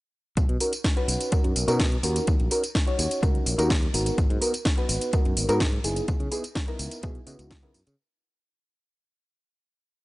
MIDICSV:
0, 0, Header, 1, 5, 480
1, 0, Start_track
1, 0, Key_signature, 5, "major"
1, 0, Tempo, 476190
1, 372, Time_signature, 4, 2, 24, 8
1, 10121, End_track
2, 0, Start_track
2, 0, Title_t, "Reed electric piano"
2, 0, Program_c, 0, 4
2, 607, Note_on_c, 0, 61, 78
2, 610, Note_on_c, 0, 63, 72
2, 613, Note_on_c, 0, 66, 74
2, 616, Note_on_c, 0, 70, 85
2, 715, Note_off_c, 0, 61, 0
2, 717, Note_off_c, 0, 63, 0
2, 718, Note_off_c, 0, 66, 0
2, 720, Note_off_c, 0, 70, 0
2, 970, Note_on_c, 0, 61, 93
2, 973, Note_on_c, 0, 63, 85
2, 976, Note_on_c, 0, 66, 85
2, 979, Note_on_c, 0, 71, 102
2, 1302, Note_off_c, 0, 61, 0
2, 1303, Note_off_c, 0, 63, 0
2, 1304, Note_off_c, 0, 66, 0
2, 1306, Note_off_c, 0, 71, 0
2, 1324, Note_on_c, 0, 61, 77
2, 1329, Note_on_c, 0, 63, 68
2, 1331, Note_on_c, 0, 66, 68
2, 1333, Note_on_c, 0, 70, 83
2, 1662, Note_off_c, 0, 61, 0
2, 1664, Note_off_c, 0, 63, 0
2, 1666, Note_off_c, 0, 66, 0
2, 1667, Note_off_c, 0, 70, 0
2, 1689, Note_on_c, 0, 61, 99
2, 1692, Note_on_c, 0, 63, 92
2, 1694, Note_on_c, 0, 66, 87
2, 1696, Note_on_c, 0, 70, 100
2, 1792, Note_off_c, 0, 61, 0
2, 1794, Note_off_c, 0, 63, 0
2, 1795, Note_off_c, 0, 66, 0
2, 1796, Note_off_c, 0, 70, 0
2, 2048, Note_on_c, 0, 61, 75
2, 2051, Note_on_c, 0, 63, 71
2, 2053, Note_on_c, 0, 66, 70
2, 2056, Note_on_c, 0, 70, 85
2, 2502, Note_off_c, 0, 61, 0
2, 2504, Note_off_c, 0, 63, 0
2, 2505, Note_off_c, 0, 66, 0
2, 2506, Note_off_c, 0, 70, 0
2, 2527, Note_on_c, 0, 61, 77
2, 2528, Note_on_c, 0, 63, 71
2, 2532, Note_on_c, 0, 66, 74
2, 2537, Note_on_c, 0, 70, 91
2, 2635, Note_off_c, 0, 61, 0
2, 2636, Note_off_c, 0, 63, 0
2, 2638, Note_off_c, 0, 66, 0
2, 2640, Note_off_c, 0, 70, 0
2, 2889, Note_on_c, 0, 61, 92
2, 2891, Note_on_c, 0, 63, 85
2, 2895, Note_on_c, 0, 66, 83
2, 2899, Note_on_c, 0, 73, 101
2, 3221, Note_off_c, 0, 61, 0
2, 3222, Note_off_c, 0, 63, 0
2, 3224, Note_off_c, 0, 66, 0
2, 3226, Note_off_c, 0, 73, 0
2, 3248, Note_on_c, 0, 61, 80
2, 3249, Note_on_c, 0, 63, 73
2, 3252, Note_on_c, 0, 66, 71
2, 3255, Note_on_c, 0, 70, 84
2, 3584, Note_off_c, 0, 61, 0
2, 3585, Note_off_c, 0, 63, 0
2, 3586, Note_off_c, 0, 66, 0
2, 3587, Note_off_c, 0, 70, 0
2, 3611, Note_on_c, 0, 61, 93
2, 3612, Note_on_c, 0, 63, 89
2, 3615, Note_on_c, 0, 66, 91
2, 3619, Note_on_c, 0, 70, 104
2, 3713, Note_off_c, 0, 61, 0
2, 3714, Note_off_c, 0, 63, 0
2, 3715, Note_off_c, 0, 66, 0
2, 3717, Note_off_c, 0, 70, 0
2, 3969, Note_on_c, 0, 59, 78
2, 3973, Note_on_c, 0, 63, 72
2, 3974, Note_on_c, 0, 66, 69
2, 3977, Note_on_c, 0, 70, 83
2, 4423, Note_off_c, 0, 59, 0
2, 4425, Note_off_c, 0, 63, 0
2, 4425, Note_off_c, 0, 66, 0
2, 4427, Note_off_c, 0, 70, 0
2, 4448, Note_on_c, 0, 59, 84
2, 4450, Note_on_c, 0, 63, 74
2, 4452, Note_on_c, 0, 66, 75
2, 4456, Note_on_c, 0, 70, 89
2, 4556, Note_off_c, 0, 59, 0
2, 4557, Note_off_c, 0, 63, 0
2, 4558, Note_off_c, 0, 66, 0
2, 4560, Note_off_c, 0, 70, 0
2, 4811, Note_on_c, 0, 59, 87
2, 4815, Note_on_c, 0, 63, 84
2, 4816, Note_on_c, 0, 66, 85
2, 4820, Note_on_c, 0, 71, 103
2, 5142, Note_off_c, 0, 59, 0
2, 5144, Note_off_c, 0, 63, 0
2, 5145, Note_off_c, 0, 66, 0
2, 5146, Note_off_c, 0, 71, 0
2, 5171, Note_on_c, 0, 59, 80
2, 5172, Note_on_c, 0, 63, 75
2, 5176, Note_on_c, 0, 66, 71
2, 5179, Note_on_c, 0, 70, 86
2, 5506, Note_off_c, 0, 59, 0
2, 5506, Note_off_c, 0, 63, 0
2, 5508, Note_off_c, 0, 66, 0
2, 5509, Note_off_c, 0, 70, 0
2, 5530, Note_on_c, 0, 59, 93
2, 5532, Note_on_c, 0, 63, 88
2, 5535, Note_on_c, 0, 66, 95
2, 5537, Note_on_c, 0, 70, 111
2, 5633, Note_off_c, 0, 59, 0
2, 5634, Note_off_c, 0, 63, 0
2, 5635, Note_off_c, 0, 66, 0
2, 5636, Note_off_c, 0, 70, 0
2, 5885, Note_on_c, 0, 59, 77
2, 5889, Note_on_c, 0, 63, 70
2, 5891, Note_on_c, 0, 64, 76
2, 5894, Note_on_c, 0, 68, 91
2, 6341, Note_off_c, 0, 59, 0
2, 6343, Note_off_c, 0, 63, 0
2, 6344, Note_off_c, 0, 64, 0
2, 6345, Note_off_c, 0, 68, 0
2, 6364, Note_on_c, 0, 59, 84
2, 6368, Note_on_c, 0, 63, 72
2, 6370, Note_on_c, 0, 64, 75
2, 6372, Note_on_c, 0, 68, 88
2, 6474, Note_off_c, 0, 59, 0
2, 6476, Note_off_c, 0, 63, 0
2, 6477, Note_off_c, 0, 64, 0
2, 6478, Note_off_c, 0, 68, 0
2, 6728, Note_on_c, 0, 59, 94
2, 6732, Note_on_c, 0, 63, 80
2, 6734, Note_on_c, 0, 64, 86
2, 6736, Note_on_c, 0, 70, 102
2, 7060, Note_off_c, 0, 59, 0
2, 7063, Note_off_c, 0, 63, 0
2, 7064, Note_off_c, 0, 64, 0
2, 7065, Note_off_c, 0, 70, 0
2, 7089, Note_on_c, 0, 59, 80
2, 7090, Note_on_c, 0, 63, 73
2, 7093, Note_on_c, 0, 64, 70
2, 7096, Note_on_c, 0, 68, 84
2, 7307, Note_off_c, 0, 59, 0
2, 7308, Note_off_c, 0, 63, 0
2, 7310, Note_off_c, 0, 64, 0
2, 7311, Note_off_c, 0, 68, 0
2, 7325, Note_on_c, 0, 59, 83
2, 7329, Note_on_c, 0, 63, 70
2, 7330, Note_on_c, 0, 64, 72
2, 7334, Note_on_c, 0, 66, 90
2, 7663, Note_off_c, 0, 59, 0
2, 7665, Note_off_c, 0, 63, 0
2, 7665, Note_off_c, 0, 64, 0
2, 7667, Note_off_c, 0, 66, 0
2, 7689, Note_on_c, 0, 59, 98
2, 7693, Note_on_c, 0, 63, 83
2, 7696, Note_on_c, 0, 64, 86
2, 7697, Note_on_c, 0, 70, 102
2, 7854, Note_off_c, 0, 59, 0
2, 7857, Note_off_c, 0, 63, 0
2, 7858, Note_off_c, 0, 64, 0
2, 7858, Note_off_c, 0, 70, 0
2, 10121, End_track
3, 0, Start_track
3, 0, Title_t, "Fingered electric bass"
3, 0, Program_c, 1, 33
3, 375, Note_on_c, 1, 35, 95
3, 448, Note_off_c, 1, 35, 0
3, 493, Note_on_c, 1, 47, 94
3, 565, Note_off_c, 1, 47, 0
3, 1088, Note_on_c, 1, 35, 84
3, 1164, Note_off_c, 1, 35, 0
3, 1453, Note_on_c, 1, 42, 82
3, 1525, Note_off_c, 1, 42, 0
3, 1570, Note_on_c, 1, 35, 80
3, 1645, Note_off_c, 1, 35, 0
3, 1691, Note_on_c, 1, 47, 103
3, 1976, Note_off_c, 1, 47, 0
3, 2048, Note_on_c, 1, 39, 104
3, 2198, Note_off_c, 1, 39, 0
3, 2295, Note_on_c, 1, 39, 97
3, 2368, Note_off_c, 1, 39, 0
3, 2415, Note_on_c, 1, 34, 94
3, 2486, Note_off_c, 1, 34, 0
3, 3012, Note_on_c, 1, 39, 90
3, 3086, Note_off_c, 1, 39, 0
3, 3255, Note_on_c, 1, 37, 92
3, 3401, Note_off_c, 1, 37, 0
3, 3489, Note_on_c, 1, 34, 98
3, 3565, Note_off_c, 1, 34, 0
3, 3612, Note_on_c, 1, 39, 112
3, 3897, Note_off_c, 1, 39, 0
3, 3970, Note_on_c, 1, 32, 97
3, 4118, Note_off_c, 1, 32, 0
3, 4214, Note_on_c, 1, 32, 98
3, 4288, Note_off_c, 1, 32, 0
3, 4336, Note_on_c, 1, 44, 97
3, 4406, Note_off_c, 1, 44, 0
3, 4930, Note_on_c, 1, 32, 88
3, 5005, Note_off_c, 1, 32, 0
3, 5298, Note_on_c, 1, 42, 81
3, 5367, Note_off_c, 1, 42, 0
3, 5412, Note_on_c, 1, 32, 86
3, 5487, Note_off_c, 1, 32, 0
3, 5530, Note_on_c, 1, 44, 105
3, 5816, Note_off_c, 1, 44, 0
3, 5887, Note_on_c, 1, 30, 104
3, 6037, Note_off_c, 1, 30, 0
3, 6132, Note_on_c, 1, 37, 95
3, 6207, Note_off_c, 1, 37, 0
3, 6248, Note_on_c, 1, 49, 98
3, 6322, Note_off_c, 1, 49, 0
3, 6848, Note_on_c, 1, 37, 90
3, 6924, Note_off_c, 1, 37, 0
3, 7089, Note_on_c, 1, 47, 98
3, 7238, Note_off_c, 1, 47, 0
3, 7326, Note_on_c, 1, 49, 105
3, 7404, Note_off_c, 1, 49, 0
3, 7448, Note_on_c, 1, 37, 103
3, 7687, Note_off_c, 1, 37, 0
3, 7693, Note_on_c, 1, 49, 83
3, 7765, Note_off_c, 1, 49, 0
3, 7806, Note_on_c, 1, 42, 89
3, 7884, Note_off_c, 1, 42, 0
3, 7934, Note_on_c, 1, 49, 94
3, 8005, Note_off_c, 1, 49, 0
3, 10121, End_track
4, 0, Start_track
4, 0, Title_t, "Muted fingered electric bass strokes"
4, 1334, Note_on_c, 9, 29, 41
4, 1435, Note_off_c, 9, 29, 0
4, 5174, Note_on_c, 9, 29, 44
4, 5275, Note_off_c, 9, 29, 0
4, 10121, End_track
5, 0, Start_track
5, 0, Title_t, "Drums"
5, 372, Note_on_c, 9, 42, 56
5, 373, Note_on_c, 9, 54, 35
5, 374, Note_on_c, 9, 36, 121
5, 473, Note_off_c, 9, 42, 0
5, 474, Note_off_c, 9, 54, 0
5, 475, Note_off_c, 9, 36, 0
5, 495, Note_on_c, 9, 42, 29
5, 596, Note_off_c, 9, 42, 0
5, 609, Note_on_c, 9, 46, 108
5, 611, Note_on_c, 9, 54, 78
5, 710, Note_off_c, 9, 46, 0
5, 711, Note_off_c, 9, 54, 0
5, 733, Note_on_c, 9, 42, 58
5, 734, Note_on_c, 9, 54, 45
5, 834, Note_off_c, 9, 42, 0
5, 835, Note_off_c, 9, 54, 0
5, 851, Note_on_c, 9, 38, 127
5, 852, Note_on_c, 9, 42, 56
5, 854, Note_on_c, 9, 36, 121
5, 952, Note_off_c, 9, 38, 0
5, 953, Note_off_c, 9, 42, 0
5, 955, Note_off_c, 9, 36, 0
5, 976, Note_on_c, 9, 42, 29
5, 1076, Note_off_c, 9, 42, 0
5, 1093, Note_on_c, 9, 46, 110
5, 1094, Note_on_c, 9, 54, 79
5, 1194, Note_off_c, 9, 46, 0
5, 1195, Note_off_c, 9, 54, 0
5, 1215, Note_on_c, 9, 42, 60
5, 1216, Note_on_c, 9, 54, 47
5, 1316, Note_off_c, 9, 42, 0
5, 1317, Note_off_c, 9, 54, 0
5, 1330, Note_on_c, 9, 42, 57
5, 1331, Note_on_c, 9, 54, 37
5, 1335, Note_on_c, 9, 36, 123
5, 1431, Note_off_c, 9, 42, 0
5, 1432, Note_off_c, 9, 54, 0
5, 1436, Note_off_c, 9, 36, 0
5, 1455, Note_on_c, 9, 42, 29
5, 1555, Note_off_c, 9, 42, 0
5, 1571, Note_on_c, 9, 46, 107
5, 1572, Note_on_c, 9, 54, 84
5, 1672, Note_off_c, 9, 46, 0
5, 1673, Note_off_c, 9, 54, 0
5, 1694, Note_on_c, 9, 42, 56
5, 1696, Note_on_c, 9, 54, 46
5, 1795, Note_off_c, 9, 42, 0
5, 1796, Note_off_c, 9, 54, 0
5, 1810, Note_on_c, 9, 38, 118
5, 1812, Note_on_c, 9, 42, 55
5, 1816, Note_on_c, 9, 36, 117
5, 1911, Note_off_c, 9, 38, 0
5, 1912, Note_off_c, 9, 42, 0
5, 1916, Note_off_c, 9, 36, 0
5, 1935, Note_on_c, 9, 42, 28
5, 2035, Note_off_c, 9, 42, 0
5, 2050, Note_on_c, 9, 46, 106
5, 2051, Note_on_c, 9, 54, 79
5, 2151, Note_off_c, 9, 46, 0
5, 2152, Note_off_c, 9, 54, 0
5, 2176, Note_on_c, 9, 42, 63
5, 2177, Note_on_c, 9, 54, 50
5, 2277, Note_off_c, 9, 42, 0
5, 2278, Note_off_c, 9, 54, 0
5, 2291, Note_on_c, 9, 42, 54
5, 2292, Note_on_c, 9, 54, 34
5, 2296, Note_on_c, 9, 36, 126
5, 2392, Note_off_c, 9, 42, 0
5, 2393, Note_off_c, 9, 54, 0
5, 2397, Note_off_c, 9, 36, 0
5, 2416, Note_on_c, 9, 42, 27
5, 2516, Note_off_c, 9, 42, 0
5, 2531, Note_on_c, 9, 46, 113
5, 2532, Note_on_c, 9, 54, 79
5, 2632, Note_off_c, 9, 46, 0
5, 2633, Note_off_c, 9, 54, 0
5, 2657, Note_on_c, 9, 42, 57
5, 2658, Note_on_c, 9, 54, 46
5, 2758, Note_off_c, 9, 42, 0
5, 2759, Note_off_c, 9, 54, 0
5, 2772, Note_on_c, 9, 38, 127
5, 2773, Note_on_c, 9, 42, 52
5, 2775, Note_on_c, 9, 36, 127
5, 2775, Note_on_c, 9, 54, 34
5, 2873, Note_off_c, 9, 38, 0
5, 2874, Note_off_c, 9, 42, 0
5, 2875, Note_off_c, 9, 54, 0
5, 2876, Note_off_c, 9, 36, 0
5, 2896, Note_on_c, 9, 42, 29
5, 2997, Note_off_c, 9, 42, 0
5, 3013, Note_on_c, 9, 46, 109
5, 3014, Note_on_c, 9, 54, 80
5, 3113, Note_off_c, 9, 46, 0
5, 3115, Note_off_c, 9, 54, 0
5, 3136, Note_on_c, 9, 42, 58
5, 3138, Note_on_c, 9, 54, 47
5, 3237, Note_off_c, 9, 42, 0
5, 3238, Note_off_c, 9, 54, 0
5, 3254, Note_on_c, 9, 36, 125
5, 3255, Note_on_c, 9, 42, 55
5, 3256, Note_on_c, 9, 54, 35
5, 3355, Note_off_c, 9, 36, 0
5, 3356, Note_off_c, 9, 42, 0
5, 3357, Note_off_c, 9, 54, 0
5, 3377, Note_on_c, 9, 42, 28
5, 3478, Note_off_c, 9, 42, 0
5, 3492, Note_on_c, 9, 46, 112
5, 3493, Note_on_c, 9, 54, 79
5, 3592, Note_off_c, 9, 46, 0
5, 3594, Note_off_c, 9, 54, 0
5, 3615, Note_on_c, 9, 42, 54
5, 3617, Note_on_c, 9, 54, 44
5, 3716, Note_off_c, 9, 42, 0
5, 3717, Note_off_c, 9, 54, 0
5, 3732, Note_on_c, 9, 38, 123
5, 3734, Note_on_c, 9, 36, 126
5, 3734, Note_on_c, 9, 42, 53
5, 3735, Note_on_c, 9, 54, 34
5, 3833, Note_off_c, 9, 38, 0
5, 3834, Note_off_c, 9, 42, 0
5, 3835, Note_off_c, 9, 36, 0
5, 3836, Note_off_c, 9, 54, 0
5, 3857, Note_on_c, 9, 42, 28
5, 3957, Note_off_c, 9, 42, 0
5, 3973, Note_on_c, 9, 46, 114
5, 3974, Note_on_c, 9, 54, 78
5, 4073, Note_off_c, 9, 46, 0
5, 4075, Note_off_c, 9, 54, 0
5, 4095, Note_on_c, 9, 42, 60
5, 4096, Note_on_c, 9, 54, 48
5, 4196, Note_off_c, 9, 42, 0
5, 4197, Note_off_c, 9, 54, 0
5, 4213, Note_on_c, 9, 42, 52
5, 4215, Note_on_c, 9, 36, 127
5, 4215, Note_on_c, 9, 54, 33
5, 4314, Note_off_c, 9, 42, 0
5, 4315, Note_off_c, 9, 36, 0
5, 4315, Note_off_c, 9, 54, 0
5, 4338, Note_on_c, 9, 42, 28
5, 4439, Note_off_c, 9, 42, 0
5, 4451, Note_on_c, 9, 46, 112
5, 4452, Note_on_c, 9, 54, 76
5, 4552, Note_off_c, 9, 46, 0
5, 4553, Note_off_c, 9, 54, 0
5, 4575, Note_on_c, 9, 42, 53
5, 4576, Note_on_c, 9, 54, 47
5, 4676, Note_off_c, 9, 42, 0
5, 4677, Note_off_c, 9, 54, 0
5, 4689, Note_on_c, 9, 38, 124
5, 4690, Note_on_c, 9, 42, 53
5, 4692, Note_on_c, 9, 54, 32
5, 4695, Note_on_c, 9, 36, 127
5, 4790, Note_off_c, 9, 38, 0
5, 4791, Note_off_c, 9, 42, 0
5, 4792, Note_off_c, 9, 54, 0
5, 4796, Note_off_c, 9, 36, 0
5, 4814, Note_on_c, 9, 42, 28
5, 4915, Note_off_c, 9, 42, 0
5, 4930, Note_on_c, 9, 46, 118
5, 4931, Note_on_c, 9, 54, 78
5, 5031, Note_off_c, 9, 46, 0
5, 5032, Note_off_c, 9, 54, 0
5, 5054, Note_on_c, 9, 42, 52
5, 5055, Note_on_c, 9, 54, 45
5, 5155, Note_off_c, 9, 42, 0
5, 5156, Note_off_c, 9, 54, 0
5, 5171, Note_on_c, 9, 42, 52
5, 5172, Note_on_c, 9, 54, 34
5, 5175, Note_on_c, 9, 36, 127
5, 5272, Note_off_c, 9, 42, 0
5, 5273, Note_off_c, 9, 54, 0
5, 5276, Note_off_c, 9, 36, 0
5, 5295, Note_on_c, 9, 42, 28
5, 5395, Note_off_c, 9, 42, 0
5, 5411, Note_on_c, 9, 46, 118
5, 5412, Note_on_c, 9, 54, 78
5, 5511, Note_off_c, 9, 46, 0
5, 5512, Note_off_c, 9, 54, 0
5, 5533, Note_on_c, 9, 42, 51
5, 5534, Note_on_c, 9, 54, 43
5, 5634, Note_off_c, 9, 42, 0
5, 5635, Note_off_c, 9, 54, 0
5, 5648, Note_on_c, 9, 38, 127
5, 5650, Note_on_c, 9, 42, 51
5, 5651, Note_on_c, 9, 54, 31
5, 5653, Note_on_c, 9, 36, 122
5, 5749, Note_off_c, 9, 38, 0
5, 5750, Note_off_c, 9, 42, 0
5, 5752, Note_off_c, 9, 54, 0
5, 5754, Note_off_c, 9, 36, 0
5, 5772, Note_on_c, 9, 42, 25
5, 5873, Note_off_c, 9, 42, 0
5, 5888, Note_on_c, 9, 46, 121
5, 5890, Note_on_c, 9, 54, 78
5, 5989, Note_off_c, 9, 46, 0
5, 5990, Note_off_c, 9, 54, 0
5, 6012, Note_on_c, 9, 42, 53
5, 6013, Note_on_c, 9, 54, 47
5, 6112, Note_off_c, 9, 42, 0
5, 6114, Note_off_c, 9, 54, 0
5, 6129, Note_on_c, 9, 42, 52
5, 6130, Note_on_c, 9, 54, 34
5, 6132, Note_on_c, 9, 36, 119
5, 6230, Note_off_c, 9, 42, 0
5, 6231, Note_off_c, 9, 54, 0
5, 6233, Note_off_c, 9, 36, 0
5, 6251, Note_on_c, 9, 42, 27
5, 6352, Note_off_c, 9, 42, 0
5, 6366, Note_on_c, 9, 46, 110
5, 6368, Note_on_c, 9, 54, 79
5, 6467, Note_off_c, 9, 46, 0
5, 6468, Note_off_c, 9, 54, 0
5, 6491, Note_on_c, 9, 42, 50
5, 6493, Note_on_c, 9, 54, 44
5, 6592, Note_off_c, 9, 42, 0
5, 6593, Note_off_c, 9, 54, 0
5, 6606, Note_on_c, 9, 38, 121
5, 6608, Note_on_c, 9, 42, 52
5, 6609, Note_on_c, 9, 54, 34
5, 6612, Note_on_c, 9, 36, 125
5, 6707, Note_off_c, 9, 38, 0
5, 6709, Note_off_c, 9, 42, 0
5, 6710, Note_off_c, 9, 54, 0
5, 6713, Note_off_c, 9, 36, 0
5, 6731, Note_on_c, 9, 42, 26
5, 6831, Note_off_c, 9, 42, 0
5, 6846, Note_on_c, 9, 46, 117
5, 6848, Note_on_c, 9, 54, 76
5, 6947, Note_off_c, 9, 46, 0
5, 6948, Note_off_c, 9, 54, 0
5, 6969, Note_on_c, 9, 42, 55
5, 6970, Note_on_c, 9, 54, 48
5, 7070, Note_off_c, 9, 42, 0
5, 7071, Note_off_c, 9, 54, 0
5, 7085, Note_on_c, 9, 42, 51
5, 7086, Note_on_c, 9, 54, 35
5, 7091, Note_on_c, 9, 36, 127
5, 7186, Note_off_c, 9, 42, 0
5, 7187, Note_off_c, 9, 54, 0
5, 7192, Note_off_c, 9, 36, 0
5, 7208, Note_on_c, 9, 42, 26
5, 7309, Note_off_c, 9, 42, 0
5, 7325, Note_on_c, 9, 46, 116
5, 7326, Note_on_c, 9, 54, 77
5, 7425, Note_off_c, 9, 46, 0
5, 7427, Note_off_c, 9, 54, 0
5, 7450, Note_on_c, 9, 42, 51
5, 7451, Note_on_c, 9, 54, 43
5, 7551, Note_off_c, 9, 42, 0
5, 7552, Note_off_c, 9, 54, 0
5, 7566, Note_on_c, 9, 38, 123
5, 7568, Note_on_c, 9, 42, 48
5, 7569, Note_on_c, 9, 54, 33
5, 7572, Note_on_c, 9, 36, 124
5, 7667, Note_off_c, 9, 38, 0
5, 7668, Note_off_c, 9, 42, 0
5, 7670, Note_off_c, 9, 54, 0
5, 7672, Note_off_c, 9, 36, 0
5, 7690, Note_on_c, 9, 42, 27
5, 7790, Note_off_c, 9, 42, 0
5, 7805, Note_on_c, 9, 46, 110
5, 7806, Note_on_c, 9, 54, 82
5, 7906, Note_off_c, 9, 46, 0
5, 7907, Note_off_c, 9, 54, 0
5, 7931, Note_on_c, 9, 42, 56
5, 7932, Note_on_c, 9, 54, 46
5, 8031, Note_off_c, 9, 42, 0
5, 8033, Note_off_c, 9, 54, 0
5, 10121, End_track
0, 0, End_of_file